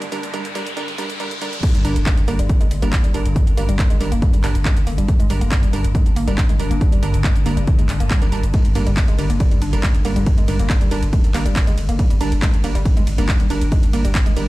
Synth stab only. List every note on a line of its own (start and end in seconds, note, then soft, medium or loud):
0.12 0.24 G3 loud
0.12 0.24 D4 medium
0.12 0.24 A#4 loud
0.33 0.45 G3 loud
0.33 0.45 D4 medium
0.33 0.45 A#4 loud
0.55 0.67 G3 loud
0.55 0.67 D4 medium
0.55 0.67 A#4 loud
0.77 0.88 G3 loud
0.77 0.88 D4 medium
0.77 0.88 A#4 loud
0.98 1.10 G3 loud
0.98 1.10 D4 medium
0.98 1.10 A#4 loud
1.20 1.31 G3 medium
1.20 1.31 D4 medium
1.20 1.31 A#4 loud
1.42 1.53 G3 medium
1.42 1.53 D4 medium
1.42 1.53 A#4 loud
1.85 1.96 G3 medium
1.85 1.96 D4 medium
1.85 1.96 A#4 loud
2.28 2.39 G3 medium
2.28 2.39 D4 medium
2.28 2.39 A#4 loud
2.82 2.93 G3 medium
2.82 2.93 D4 medium
2.82 2.93 A#4 loud
3.14 3.55 G3 medium
3.14 3.55 D4 medium
3.14 3.55 A#4 medium
3.57 3.75 G3 medium
3.57 3.75 D4 medium
3.57 3.75 A#4 loud
4.01 4.12 G3 medium
4.01 4.12 D4 medium
4.01 4.12 A#4 loud
4.44 4.55 G3 loud
4.44 4.55 D4 medium
4.44 4.55 A#4 loud
5.30 5.42 G3 medium
5.30 5.41 D4 medium
5.30 5.41 A#4 loud
5.73 5.85 G3 medium
5.73 5.85 D4 medium
5.73 5.85 A#4 loud
6.28 6.38 G3 medium
6.28 6.38 D4 medium
6.28 6.38 A#4 loud
6.59 7.00 G3 medium
6.59 7.00 D4 medium
6.59 7.00 A#4 medium
7.03 7.20 G3 medium
7.03 7.20 D4 medium
7.03 7.20 A#4 medium
7.46 7.57 G3 medium
7.46 7.57 D4 medium
7.46 7.57 A#4 loud
8.22 8.31 G3 loud
8.22 8.31 D4 medium
8.22 8.31 A#4 loud
8.32 8.44 G3 medium
8.32 8.44 D4 medium
8.32 8.44 A#4 loud
8.75 8.87 G3 medium
8.75 8.87 D4 medium
8.75 8.87 A#4 loud
9.18 9.30 G3 medium
9.18 9.30 D4 medium
9.18 9.30 A#4 loud
9.73 9.83 G3 medium
9.73 9.83 D4 medium
9.73 9.83 A#4 loud
10.05 10.46 G3 medium
10.05 10.46 D4 medium
10.05 10.46 A#4 loud
10.48 10.66 G3 medium
10.48 10.66 D4 medium
10.48 10.66 A#4 loud
10.91 11.03 G3 medium
10.91 11.03 D4 medium
10.91 11.03 A#4 loud
11.34 11.46 G3 medium
11.34 11.46 D4 medium
11.34 11.46 A#4 loud
12.21 12.32 G3 medium
12.21 12.32 D4 medium
12.21 12.32 A#4 loud
12.64 12.75 G3 medium
12.64 12.75 D4 medium
12.64 12.75 A#4 loud
13.18 13.29 G3 medium
13.18 13.29 D4 medium
13.18 13.29 A#4 loud
13.50 13.91 G3 medium
13.50 13.91 D4 medium
13.50 13.91 A#4 medium
13.93 14.11 G3 medium
13.93 14.11 D4 medium
13.93 14.11 A#4 loud
14.36 14.48 G3 loud
14.36 14.48 D4 medium
14.36 14.48 A#4 loud